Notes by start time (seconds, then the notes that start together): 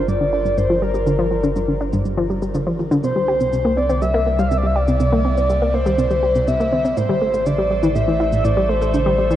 Already playing: G1 G3 G4 A#4 D5
0.08 G2 D5, cabasa
0.21 D3
0.33 D4
0.45 G2, cabasa
0.58 G2 C5, cabasa
0.70 F3
0.82 G3 A#4
0.94 G3, cabasa
1.07 D3, cabasa
1.19 F3, high tom
1.31 F3
1.44 D3, cabasa
1.56 G2, cabasa
1.68 D3
1.81 D4
1.93 G2, high tom, cabasa
2.05 G2, cabasa
2.17 F3, high tom
2.30 G3
2.42 G3, cabasa
2.54 D3, cabasa
2.67 F3
2.79 F3, high tom
2.91 D3, cabasa
3.03 C2 C3 E4 C5, cabasa
3.16 G3, high tom
3.28 G4
3.40 C3, cabasa
3.53 C3, cabasa
3.65 A#3
3.77 C4 D5
3.89 C4, high tom, cabasa
4.02 G3 E5, cabasa
4.14 A#3
4.26 A#3
4.39 G3 F5, cabasa
4.48 C3 E5, cabasa
4.57 D5
4.63 G3 E5
4.76 G4 D5
4.88 C3, cabasa
5.00 C3, cabasa
5.12 A#3, high tom
5.25 C4
5.37 C4, cabasa
5.49 G3, cabasa
5.62 A#3
5.74 A#3 C5
5.86 G3, high tom, cabasa
5.98 C3, cabasa
6.11 G3, high tom, cabasa
6.23 G4
6.35 C3, cabasa
6.48 C3 E5, cabasa
6.60 A#3, cabasa
6.72 C4, high tom
6.85 C4, cabasa
6.97 A1 A2 A3 A4 C5 E5, cabasa
7.09 G3, high tom
7.21 A3
7.34 A3, cabasa
7.46 D3 D5, cabasa
7.58 G3
7.71 G3
7.83 E3, high tom, cabasa
7.95 A2 E5, cabasa
8.08 E3
8.20 E4
8.32 A2, cabasa
8.44 A2 D5, cabasa
8.57 G3
8.69 A3 C5
8.81 A3, cabasa
8.94 D3, cabasa
9.06 G3, high tom
9.18 G3
9.30 E3, cabasa